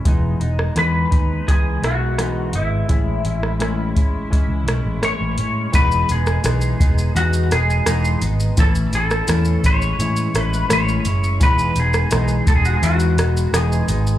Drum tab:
HH |x-x-x-x-x-x-x-x-|x-x-x-x-x-x-x-x-|x-x-x-x-x-x-x-x-|x-x-x-x-x-x-x-x-|
SH |----------------|----------------|xxxxxxxxxxxxxxxx|xxxxxxxxxxxxxxxx|
SD |---rr-----r-r---|---rr-----r-r---|---rr-----r-r---|---rr-----r-r---|
BD |o-----o-o-------|o-----o-o-------|o-----o---------|o-----o---------|

HH |x-x-x-x-x-x-x-x-|
SH |xxxxxxxxxxxxxxxx|
SD |---rr-----r-r---|
BD |o-----o---------|